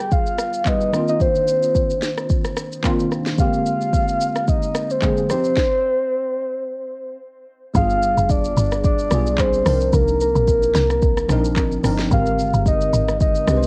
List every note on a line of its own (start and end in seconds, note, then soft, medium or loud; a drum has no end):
0.00 0.65 G3 medium
0.00 0.66 B3 medium
0.00 0.68 F4 medium
0.00 0.95 G#4 medium
0.00 0.13 G5 loud
0.11 0.68 F5 loud
0.11 kick loud
0.11 shaker medium
0.26 shaker medium
0.38 cross-stick loud
0.38 shaker medium
0.54 shaker medium
0.65 0.93 G3 medium
0.65 0.93 B3 medium
0.65 0.94 F4 medium
0.65 1.09 D#5 loud
0.65 kick medium
0.65 clap medium
0.65 shaker medium
0.69 0.95 B4 medium
0.81 shaker soft
0.92 1.80 D#3 medium
0.92 1.81 A#3 medium
0.92 1.81 C4 medium
0.92 1.82 D4 medium
0.92 cross-stick medium
0.92 shaker medium
0.96 1.82 F4 medium
1.08 1.20 D#5 medium
1.08 shaker soft
1.20 2.26 C5 medium
1.20 kick loud
1.20 shaker medium
1.35 shaker soft
1.48 shaker medium
1.63 shaker medium
1.75 kick medium
1.75 shaker medium
1.90 shaker medium
2.02 snare medium
2.02 shaker loud
2.17 cross-stick medium
2.17 shaker soft
2.30 kick loud
2.30 shaker medium
2.45 cross-stick medium
2.45 shaker medium
2.57 cross-stick loud
2.57 shaker medium
2.72 shaker medium
2.83 3.28 D#3 medium
2.83 3.29 A#3 medium
2.83 3.29 C4 medium
2.83 3.30 D4 medium
2.83 kick medium
2.83 clap medium
2.83 shaker medium
2.87 3.30 F4 loud
2.99 shaker soft
3.12 cross-stick medium
3.12 shaker medium
3.26 snare medium
3.26 shaker soft
3.37 4.26 D3 medium
3.37 4.26 G#3 medium
3.37 4.27 A#3 medium
3.37 4.27 C4 medium
3.37 4.28 G4 medium
3.37 4.50 F5 loud
3.37 kick loud
3.37 shaker medium
3.54 shaker soft
3.66 shaker medium
3.81 shaker soft
3.93 kick loud
3.93 shaker medium
4.08 shaker medium
4.21 shaker loud
4.36 cross-stick medium
4.36 shaker soft
4.48 4.93 D#5 loud
4.48 kick loud
4.48 shaker medium
4.63 shaker medium
4.75 cross-stick loud
4.75 shaker medium
4.90 5.30 C5 loud
4.90 shaker medium
5.01 5.29 D3 medium
5.01 5.30 G#3 medium
5.01 5.30 A#3 medium
5.01 5.29 C4 medium
5.01 5.31 G#4 medium
5.01 kick medium
5.01 clap medium
5.01 shaker medium
5.17 shaker soft
5.28 5.51 F3 medium
5.28 5.52 C4 medium
5.28 5.53 D#4 medium
5.28 7.17 C5 loud
5.28 cross-stick medium
5.28 shaker medium
5.33 5.53 G4 medium
5.44 shaker soft
5.57 kick loud
5.57 snare medium
7.74 8.16 G1 loud
7.74 8.62 G3 medium
7.74 8.63 B3 medium
7.74 8.63 D4 medium
7.74 8.64 F4 medium
7.74 8.32 F5 loud
7.74 kick loud
7.74 shaker medium
7.78 8.64 G#4 medium
7.90 shaker soft
8.02 shaker medium
8.17 8.56 F1 medium
8.17 shaker medium
8.29 8.84 D5 loud
8.29 kick loud
8.29 shaker medium
8.44 shaker medium
8.57 9.10 G1 loud
8.57 shaker loud
8.72 cross-stick medium
8.72 shaker soft
8.84 9.41 D5 loud
8.84 kick loud
8.84 shaker medium
8.99 shaker medium
9.10 9.64 B1 loud
9.10 9.56 G3 medium
9.10 9.56 B3 medium
9.10 9.57 D4 medium
9.10 9.57 F4 medium
9.10 9.57 G#4 medium
9.10 cross-stick loud
9.10 shaker medium
9.26 shaker medium
9.38 9.96 C5 loud
9.38 kick medium
9.38 clap medium
9.38 shaker medium
9.53 shaker soft
9.65 9.92 C2 loud
9.65 10.53 F3 medium
9.65 10.54 C4 medium
9.65 10.54 D4 medium
9.65 10.55 D#4 medium
9.65 10.55 A#4 medium
9.65 cross-stick loud
9.65 open hi-hat medium
9.65 shaker loud
9.81 shaker soft
9.93 10.34 C2 loud
9.93 10.21 A#4 medium
9.93 kick loud
9.93 shaker medium
10.08 shaker medium
10.21 11.81 A#4 medium
10.21 shaker medium
10.35 10.74 A#1 medium
10.35 shaker medium
10.48 kick loud
10.48 shaker medium
10.63 shaker medium
10.75 11.28 C2 loud
10.75 snare medium
10.75 shaker loud
10.90 cross-stick medium
10.90 shaker medium
11.02 kick loud
11.02 shaker medium
11.17 cross-stick medium
11.17 shaker medium
11.29 11.82 A#1 loud
11.29 11.74 F3 loud
11.29 11.74 C4 medium
11.29 11.75 D4 medium
11.29 11.75 D#4 medium
11.29 11.76 A#4 loud
11.29 cross-stick loud
11.29 shaker medium
11.45 shaker medium
11.56 kick medium
11.56 clap medium
11.56 shaker medium
11.72 shaker soft
11.83 12.10 G1 medium
11.83 12.06 F3 medium
11.83 12.06 C4 medium
11.83 12.07 D4 medium
11.83 12.07 D#4 medium
11.83 12.08 A#4 medium
11.83 cross-stick loud
11.83 open hi-hat medium
11.83 shaker medium
11.99 snare medium
11.99 shaker medium
12.10 12.52 G#1 loud
12.10 13.00 D3 medium
12.10 12.99 G#3 medium
12.10 12.99 C4 medium
12.10 13.00 G4 medium
12.10 13.01 A#4 medium
12.10 12.63 F5 medium
12.10 kick loud
12.10 shaker medium
12.26 shaker medium
12.39 shaker medium
12.54 12.92 G1 loud
12.54 shaker medium
12.66 13.18 D#5 medium
12.66 kick loud
12.66 shaker medium
12.81 shaker medium
12.93 13.46 G#1 loud
12.93 shaker loud
13.09 cross-stick medium
13.09 shaker medium
13.21 13.67 D#5 medium
13.21 kick loud
13.21 shaker medium
13.35 shaker medium
13.47 13.67 C2 loud
13.47 13.67 G#3 medium
13.47 13.67 C4 medium
13.47 13.67 D4 medium
13.47 13.67 G4 medium
13.47 cross-stick loud
13.47 shaker medium
13.51 13.56 B4 medium
13.57 13.67 C5 medium
13.63 shaker medium